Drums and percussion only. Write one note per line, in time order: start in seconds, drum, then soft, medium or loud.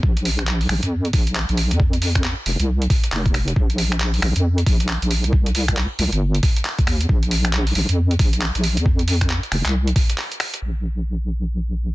0.03 kick loud
0.17 closed hi-hat medium
0.25 open hi-hat loud
0.39 finger snap medium
0.39 closed hi-hat medium
0.47 clap loud
0.61 open hi-hat medium
0.69 finger snap medium
0.69 open hi-hat medium
0.83 closed hi-hat medium
1.05 closed hi-hat soft
1.13 kick loud
1.13 open hi-hat loud
1.27 closed hi-hat medium
1.35 clap loud
1.49 closed hi-hat soft
1.57 open hi-hat loud
1.71 closed hi-hat medium
1.80 kick loud
1.93 closed hi-hat medium
2.02 open hi-hat loud
2.15 finger snap medium
2.15 kick medium
2.15 closed hi-hat medium
2.24 clap loud
2.46 open hi-hat loud
2.60 closed hi-hat medium
2.82 closed hi-hat soft
2.90 kick loud
2.90 open hi-hat loud
3.04 closed hi-hat medium
3.12 clap loud
3.12 open hi-hat medium
3.26 kick loud
3.26 closed hi-hat medium
3.34 finger snap medium
3.34 open hi-hat loud
3.48 closed hi-hat medium
3.56 kick loud
3.70 closed hi-hat medium
3.78 open hi-hat loud
3.92 finger snap medium
3.92 closed hi-hat medium
4.00 clap loud
4.14 open hi-hat medium
4.22 finger snap medium
4.22 open hi-hat medium
4.36 closed hi-hat medium
4.58 closed hi-hat soft
4.66 kick loud
4.66 open hi-hat loud
4.80 closed hi-hat medium
4.89 clap loud
5.02 closed hi-hat medium
5.11 open hi-hat loud
5.24 closed hi-hat medium
5.33 kick loud
5.46 closed hi-hat medium
5.55 open hi-hat loud
5.68 finger snap medium
5.68 kick medium
5.68 closed hi-hat medium
5.77 clap loud
5.99 open hi-hat loud
6.12 closed hi-hat medium
6.35 closed hi-hat soft
6.43 kick loud
6.43 open hi-hat loud
6.56 closed hi-hat medium
6.65 clap loud
6.65 open hi-hat medium
6.79 kick loud
6.79 closed hi-hat medium
6.87 finger snap medium
6.87 open hi-hat loud
7.01 closed hi-hat medium
7.09 kick loud
7.23 closed hi-hat medium
7.31 open hi-hat loud
7.45 finger snap medium
7.45 closed hi-hat medium
7.53 clap loud
7.67 open hi-hat medium
7.75 open hi-hat loud
7.89 closed hi-hat medium
8.11 closed hi-hat soft
8.19 kick loud
8.19 open hi-hat loud
8.33 closed hi-hat medium
8.41 clap loud
8.55 closed hi-hat medium
8.64 open hi-hat loud
8.77 closed hi-hat medium
8.86 kick loud
8.99 closed hi-hat medium
9.08 open hi-hat loud
9.21 finger snap medium
9.21 kick medium
9.21 closed hi-hat medium
9.30 clap loud
9.43 closed hi-hat soft
9.52 finger snap medium
9.52 open hi-hat loud
9.65 clap medium
9.65 closed hi-hat medium
9.87 closed hi-hat soft
9.96 kick loud
9.96 open hi-hat loud
10.10 closed hi-hat medium
10.18 clap loud
10.18 open hi-hat medium
10.32 closed hi-hat medium
10.40 finger snap medium
10.40 open hi-hat loud
10.54 closed hi-hat medium